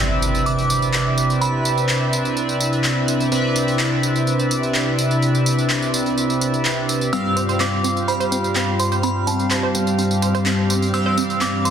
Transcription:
0.00 3.29 C3 medium
0.00 7.09 C3 medium
0.00 3.29 C4 medium
0.00 7.09 D4 medium
0.00 7.09 E4 medium
0.00 3.29 B4 medium
0.00 7.09 B4 medium
0.00 3.29 D5 medium
0.00 3.29 E5 medium
0.00 0.49 E6 loud
0.00 impact medium
0.22 tambourine medium
0.35 tambourine soft
0.46 1.44 D6 medium
0.46 tambourine soft
0.58 tambourine soft
0.70 tambourine medium
0.82 tambourine soft
0.94 clap loud
0.94 tambourine soft
1.18 tambourine medium
1.30 tambourine soft
1.41 3.04 B5 medium
1.41 tambourine soft
1.65 tambourine medium
1.78 tambourine soft
1.89 clap loud
1.89 tambourine soft
2.13 tambourine medium
2.25 tambourine soft
2.37 tambourine soft
2.49 tambourine soft
2.60 tambourine medium
2.73 tambourine soft
2.84 clap loud
2.84 tambourine soft
3.08 tambourine medium
3.20 tambourine soft
3.32 7.10 C3 medium
3.32 7.10 C4 medium
3.32 7.10 B4 medium
3.32 7.10 D5 medium
3.32 7.10 E5 medium
3.32 tambourine soft
3.56 tambourine medium
3.68 tambourine soft
3.79 clap loud
3.79 tambourine soft
4.03 tambourine medium
4.16 tambourine soft
4.27 tambourine soft
4.39 tambourine soft
4.51 tambourine medium
4.63 tambourine soft
4.74 clap loud
4.74 tambourine soft
4.99 tambourine medium
5.11 tambourine soft
5.22 tambourine soft
5.35 tambourine soft
5.46 tambourine medium
5.58 tambourine soft
5.70 clap loud
5.70 tambourine soft
5.82 tambourine soft
5.94 tambourine medium
6.06 tambourine soft
6.18 tambourine soft
6.30 tambourine soft
6.41 tambourine medium
6.54 tambourine soft
6.65 clap loud
6.65 tambourine soft
6.89 tambourine medium
7.01 tambourine soft
7.13 11.70 G2 medium
7.13 11.70 G3 medium
7.13 10.91 G3 medium
7.13 11.70 C4 medium
7.13 7.16 C4 medium
7.13 10.91 C4 medium
7.13 10.90 F4 medium
7.13 10.91 G4 medium
7.13 10.91 F5 medium
7.13 7.57 E6 loud
7.13 tambourine soft
7.37 7.42 C5 medium
7.37 tambourine medium
7.49 7.54 C5 medium
7.49 tambourine soft
7.60 7.66 C4 medium
7.60 8.09 D6 medium
7.60 clap loud
7.60 tambourine soft
7.84 7.87 C4 medium
7.84 tambourine medium
7.97 tambourine soft
8.08 8.13 C5 medium
8.08 8.82 B5 medium
8.08 tambourine soft
8.20 8.25 C5 medium
8.20 tambourine soft
8.32 8.37 C4 medium
8.32 tambourine medium
8.44 tambourine soft
8.55 8.59 C4 medium
8.55 clap medium
8.55 tambourine soft
8.79 8.85 C5 medium
8.79 9.04 C6 medium
8.79 tambourine medium
8.92 8.97 C5 loud
8.92 tambourine soft
9.03 9.09 C4 medium
9.03 9.25 B5 medium
9.03 tambourine soft
9.27 9.30 C4 medium
9.27 10.66 A5 medium
9.27 tambourine medium
9.39 tambourine soft
9.51 9.56 C5 medium
9.51 clap loud
9.51 tambourine soft
9.63 9.68 C5 medium
9.75 9.80 C4 medium
9.75 tambourine medium
9.87 tambourine soft
9.98 10.02 C4 medium
9.98 tambourine soft
10.11 tambourine soft
10.22 10.28 C5 medium
10.22 tambourine medium
10.35 10.40 C5 loud
10.35 tambourine soft
10.46 10.51 C4 medium
10.46 clap loud
10.46 tambourine soft
10.70 10.73 C4 medium
10.70 tambourine medium
10.82 tambourine soft
10.94 11.70 E3 medium
10.94 11.70 G3 medium
10.94 11.70 C4 medium
10.94 11.70 G4 medium
10.94 10.99 C5 medium
10.94 11.70 F5 medium
10.94 11.43 E6 loud
10.94 tambourine soft
11.06 11.11 C5 loud
11.17 11.23 C4 medium
11.17 tambourine medium
11.30 tambourine soft
11.41 11.44 C4 medium
11.41 11.66 D6 medium
11.41 clap loud
11.41 tambourine soft
11.65 11.70 C5 medium
11.65 11.70 C6 medium
11.65 tambourine medium

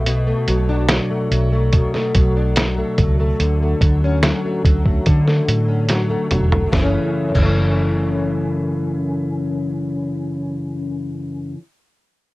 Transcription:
0.00 0.31 B1 medium
0.00 0.26 A3 medium
0.06 1.72 B2 medium
0.06 closed hi-hat medium
0.27 1.10 A3 medium
0.48 0.98 B1 medium
0.48 0.90 F#3 medium
0.48 closed hi-hat medium
0.69 2.36 D4 medium
0.89 1.31 F#3 medium
0.89 snare loud
0.89 closed hi-hat medium
1.10 1.52 A3 medium
1.31 1.81 B1 medium
1.31 2.16 F#3 medium
1.31 closed hi-hat medium
1.52 1.94 A3 medium
1.73 3.40 B2 medium
1.73 kick medium
1.73 closed hi-hat medium
1.94 2.77 A3 medium
1.94 snare soft
2.15 2.81 B1 medium
2.15 2.57 F#3 medium
2.15 kick medium
2.15 closed hi-hat medium
2.37 4.04 D4 medium
2.56 2.99 F#3 medium
2.56 snare medium
2.56 closed hi-hat loud
2.78 3.20 A3 medium
2.98 3.32 C#2 medium
2.98 3.83 F#3 soft
2.98 kick medium
2.98 closed hi-hat medium
3.20 3.62 A3 medium
3.40 3.73 D2 loud
3.40 5.06 D3 medium
3.40 closed hi-hat medium
3.63 4.45 A3 medium
3.81 4.31 D2 medium
3.81 4.23 F#3 soft
3.81 kick medium
3.81 closed hi-hat medium
4.04 5.68 C#4 medium
4.23 4.65 F#3 medium
4.23 snare medium
4.23 closed hi-hat medium
4.45 4.86 A3 soft
4.65 4.98 D2 medium
4.65 5.48 F#3 medium
4.65 kick medium
4.65 closed hi-hat medium
4.86 5.27 A3 soft
4.86 kick medium
5.06 5.40 D3 loud
5.06 6.72 D3 medium
5.06 kick medium
5.06 closed hi-hat medium
5.27 6.09 A3 soft
5.27 snare soft
5.48 6.15 A2 medium
5.48 5.89 F#3 soft
5.48 closed hi-hat medium
5.68 6.83 C#4 medium
5.89 6.31 F#3 medium
5.89 snare soft
5.89 closed hi-hat medium
6.09 6.51 A3 soft
6.31 6.64 E1 medium
6.31 6.76 F#3 soft
6.31 closed hi-hat medium
6.31 mid tom medium
6.52 6.80 A3 soft
6.52 floor tom medium
6.67 7.29 F#2 medium
6.72 6.96 F#1 medium
6.72 7.34 C#3 medium
6.72 7.32 E3 medium
6.72 kick medium
6.72 snare medium
6.80 7.42 A3 medium
6.80 7.46 C#4 medium
7.29 11.53 F#2 medium
7.35 11.52 F#1 medium
7.35 11.56 C#3 medium
7.35 kick medium
7.35 crash medium
7.39 11.58 E3 medium
7.43 11.60 A3 medium
7.43 11.62 C#4 medium

